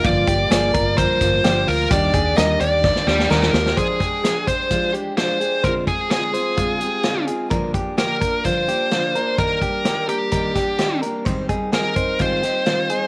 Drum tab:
HH |x-x-x-x-x-x-x-o-|x-x-x-x---------|x-x-x-x-x-x-x-x-|x-x-x-x-x-x-x-x-|
SD |----o-----o-o---|----o---oooooooo|----o-------o---|----o-------o---|
BD |o-o---o-o-o-----|o-o-----o-------|o-o---o-o-------|o-o-----o-------|

HH |x-x-x-x-x-x-x-x-|x-x-x-x-x-x-x-x-|x-x-x-x-x-x-x-x-|
SD |----o-------o---|----o-----o-o---|----o-----o-o---|
BD |o-o---o-o-------|o-o-----o-o-----|o-o---o-o-------|